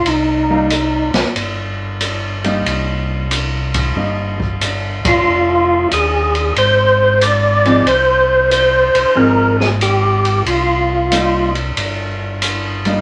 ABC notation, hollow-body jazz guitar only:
X:1
M:4/4
L:1/8
Q:"Swing" 1/4=92
K:Cm
V:1 name="Hollow-body jazz guitar"
z [G,B,E] z4 z [G,B,E]- | [G,B,E]2 z2 [G,B,E] z3 | z6 z [F,CEA] | z4 [F,CEA] z3 |
z2 [G,B,E] z4 [G,B,E] |]